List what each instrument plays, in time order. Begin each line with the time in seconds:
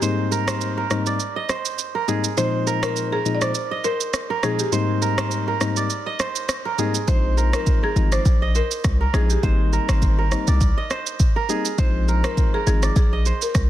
Already playing: marimba G4, kora G#4 A#4
0.02 synth keys G#2 G3 A#3 C4 D#4, kora C5, shaker
0.32 kora A#4, shaker
0.48 kora C5, cross-stick, shaker
0.61 shaker
0.77 kora A#4
0.90 synth keys G#2 G3 A#3 C4 D#4, cross-stick, shaker
1.06 kora D5, shaker
1.20 shaker
1.36 kora D#5
1.49 kora C5, cross-stick, shaker
1.65 shaker
1.78 shaker
1.95 kora A#4
2.08 synth keys G#2 G3 A#3 C4 D#4, kora G#4, shaker
2.24 shaker
2.37 synth keys A#2 F3 G#3 C4 D#4, kora C5, marimba C5, shaker
2.67 kora A#4, shaker
2.83 marimba A#4, kora C5, cross-stick, shaker
2.96 shaker
3.12 marimba G#4, kora A#4
3.25 synth keys A#2 F3 G#3 C4 D#4, shaker
3.35 marimba D5
3.41 marimba C5, kora D5, cross-stick, shaker
3.55 shaker
3.71 kora D#5
3.84 marimba A#4, kora C5, shaker
4.01 shaker
4.14 cross-stick, shaker
4.30 kora A#4
4.43 synth keys A#2 F3 G#3 C4 D#4, kora G#4, marimba G#4, cross-stick, shaker
4.59 marimba G4, shaker
4.72 synth keys G#2 G3 A#3 C4 D#4, kora C5, shaker
5.02 kora A#4, shaker
5.18 kora C5, cross-stick, shaker
5.31 shaker
5.48 kora A#4
5.60 synth keys G#2 G3 A#3 C4 D#4, cross-stick, shaker
5.76 kora D5, shaker
5.90 shaker
6.06 kora D#5
6.19 kora C5, cross-stick, shaker
6.36 shaker
6.49 cross-stick, shaker
6.65 kora A#4
6.78 synth keys G#2 G3 A#3 C4 D#4, kora G#4, shaker
6.95 shaker
7.08 808-style bass A#1, synth keys F3 G#3 C4 D#4, kora C5, marimba C5, kick, shaker
7.37 kora A#4, shaker
7.53 marimba A#4, kora C5, cross-stick, shaker
7.67 kick, shaker
7.83 marimba G#4, kora A#4
7.96 808-style bass G#1, synth keys F3 G#3 C4 D#4, shaker
8.12 marimba C5, kora D5, cross-stick, shaker
8.25 808-style bass A#1, kick, shaker
8.42 kora D#5
8.55 marimba A#4, kora C5, shaker
8.71 shaker
8.84 808-style bass C2, kick, cross-stick, shaker
9.01 kora A#4
9.13 808-style bass A#1, synth keys F3 G#3 C4 D#4, kora G#4, marimba G#4, cross-stick, shaker
9.30 marimba G4, shaker
9.43 808-style bass G#1, synth keys G3 A#3 C4 D#4, kora C5, kick, shaker
9.73 kora A#4, shaker
9.89 808-style bass G#1, kora C5, cross-stick, shaker
10.02 kick, shaker
10.19 kora A#4
10.31 synth keys G3 A#3 C4 D#4, cross-stick, shaker
10.47 808-style bass C2, kora D5, shaker
10.61 kick, shaker
10.77 kora D#5
10.90 kora C5, cross-stick, shaker
11.07 shaker
11.20 kick, shaker
11.36 kora A#4
11.49 synth keys G3 A#3 C4 D#4, kora G#4, shaker
11.65 shaker
11.78 808-style bass A#1, synth keys F3 G#3 C4 D#4, kora C5, marimba C5, kick, shaker
12.08 kora A#4, shaker
12.24 marimba A#4, kora C5, cross-stick, shaker
12.37 kick, shaker
12.54 marimba G#4, kora A#4
12.66 808-style bass G#1, synth keys F3 G#3 C4 D#4, marimba G#4, shaker
12.83 kora D5, cross-stick, shaker
12.96 808-style bass A#1, marimba G#4, kick, shaker
13.13 kora D#5
13.26 kora C5, shaker
13.42 marimba A#4, shaker
13.55 808-style bass C2, kick, cross-stick, shaker